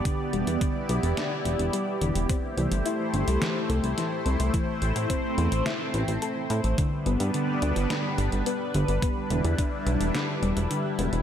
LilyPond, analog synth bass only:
\new Staff \with { instrumentName = "Analog synth bass" } { \clef bass \time 4/4 \key e \minor \tempo 4 = 107 r8 e,,16 e,16 r8 b,,16 e,,16 r8 e,,16 e,,16 r8 e,,16 e,,16 | r8 c,16 g,,16 r8 g,,16 c,16 r8 c,16 c,16 r8 c,16 c,16 | r8 a,,16 a,16 r8 e,16 a,,16 r8 a,,16 a,,16 r8 a,16 a,,16 | r8 g,,16 g,16 r8 d,16 g,,16 r8 g,,16 g,,16 r8 g,,16 g,,16 |
r8 e,,16 e,16 r8 b,,16 e,,16 r8 e,,16 e,,16 r8 e,,16 e,,16 | }